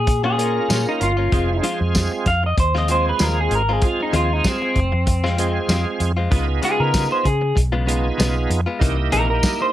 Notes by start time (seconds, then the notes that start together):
Already playing: A#2 G#4
0.07 muted clean electric guitar stroke, kick, closed hi-hat
0.24 A#2 A#3 C#4 F4 G#4
0.37 A#2 A#3 C#4 F4 A#4, closed hi-hat
0.69 A#2 A#3 C#4 F4, snare, closed hi-hat, tambourine
0.86 D#4, muted clean electric guitar stroke
1.01 G1 F4, muted clean electric guitar stroke, closed hi-hat
1.17 A#3 C#4 F4
1.32 F1 F3 G#3 C4 F4 G#4, kick, closed hi-hat
1.49 muted clean electric guitar stroke
1.63 F3 G#3 C4 F4, closed hi-hat
1.80 F2, muted clean electric guitar stroke
1.95 kick, snare, closed hi-hat, tambourine
2.11 muted clean electric guitar stroke
2.26 F2 F5, muted clean electric guitar stroke, kick, snare, closed hi-hat
2.43 D#5, muted clean electric guitar stroke
2.58 D#2 C5, muted clean electric guitar stroke, kick, closed hi-hat
2.75 F3 G#3 C4 F4 D#5, snare
2.88 F3 G#3 C4 F4 G#4 C5, closed hi-hat
3.09 B4
3.19 D#2 F3 G#3 C4 F4 A#4, snare, closed hi-hat, tambourine
3.38 G#4, muted clean electric guitar stroke
3.51 G#1, muted clean electric guitar stroke, closed hi-hat
3.55 A#4
3.69 G#3 C4 F4 G#4
3.82 G#3 C4 F4 G#4, kick, closed hi-hat
4.00 D#4, muted clean electric guitar stroke
4.13 D#2 F3 G#3 C4 F4, closed hi-hat
4.31 D#4, muted clean electric guitar stroke
4.44 C4, kick, snare, closed hi-hat, tambourine
4.62 muted clean electric guitar stroke
4.75 F1, muted clean electric guitar stroke, kick, closed hi-hat
4.92 F2, muted clean electric guitar stroke
5.06 muted clean electric guitar stroke, kick, closed hi-hat
5.24 F3 G#3 C4 F4, snare
5.37 F3 G#3 C4 F4 G#4, closed hi-hat
5.69 F2 F3 G#3 C4 F4, snare, closed hi-hat, tambourine
5.86 muted clean electric guitar stroke
6.00 F2, muted clean electric guitar stroke, closed hi-hat
6.17 G#3 C4 F4
6.31 C#2 C#3 G#3 B3 D#4 F4 G#4, kick, closed hi-hat
6.47 muted clean electric guitar stroke
6.62 C#3 G#3 B3 F4 G#4, closed hi-hat
6.79 C#3 A#4, muted clean electric guitar stroke
6.94 kick, snare, closed hi-hat, tambourine
7.11 C5, muted clean electric guitar stroke
7.24 C#3 G#4, muted clean electric guitar stroke, kick, closed hi-hat
7.41 muted clean electric guitar stroke
7.55 B1, muted clean electric guitar stroke, kick, closed hi-hat
7.72 C#3 G#3 B3 F4
7.86 C#3 G#3 B3 D#4 F4 G#4, closed hi-hat
8.18 B1 C#3 G#3 B3 F4, snare, closed hi-hat, tambourine
8.36 muted clean electric guitar stroke
8.49 F2, muted clean electric guitar stroke, closed hi-hat
8.66 G#3 B3 F4
8.79 C2 C3 E3 A#3 D#4 E4 G4, kick, closed hi-hat
8.98 muted clean electric guitar stroke
9.12 A#1 C3 E3 A#3 D#4 A#4, closed hi-hat
9.30 A#4, muted clean electric guitar stroke
9.43 kick, snare, closed hi-hat, tambourine
9.60 C5, muted clean electric guitar stroke